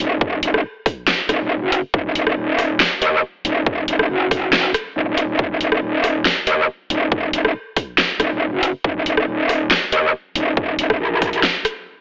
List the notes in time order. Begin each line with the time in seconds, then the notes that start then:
0.00 D#1
0.21 kick
0.43 D#1, closed hi-hat
0.54 cross-stick
0.86 kick, cross-stick, open hi-hat
1.08 snare, clap
1.29 D#1, cross-stick, closed hi-hat
1.62 F#1
1.72 closed hi-hat
1.94 D#1, kick
2.15 closed hi-hat
2.27 cross-stick
2.37 D#1
2.59 cross-stick, open hi-hat
2.80 snare, clap
3.02 D#2, closed hi-hat
3.45 D#1, closed hi-hat
3.66 kick
3.88 D#1, closed hi-hat
3.99 cross-stick
4.10 F#1
4.31 kick, cross-stick, open hi-hat
4.53 snare, clap
4.74 cross-stick, closed hi-hat
4.96 D#1
5.07 D#1
5.18 closed hi-hat
5.39 D#1, kick
5.61 closed hi-hat
5.72 cross-stick
5.82 D#1
6.04 cross-stick, open hi-hat
6.25 snare, clap
6.47 D#2, closed hi-hat
6.90 D#1, closed hi-hat
7.12 kick
7.33 D#1, closed hi-hat
7.45 cross-stick
7.76 kick, cross-stick, open hi-hat
7.98 snare, clap
8.20 D#1, cross-stick, closed hi-hat
8.53 F#1
8.63 closed hi-hat
8.84 D#1, kick
9.06 closed hi-hat
9.17 cross-stick
9.28 D#1
9.49 cross-stick, open hi-hat
9.71 snare, clap
9.92 D#2, closed hi-hat
10.36 D#1, closed hi-hat
10.57 kick
10.79 D#1, closed hi-hat
10.90 kick, cross-stick
11.00 A#1
11.22 kick, cross-stick, open hi-hat
11.33 closed hi-hat
11.43 snare, clap
11.65 cross-stick, closed hi-hat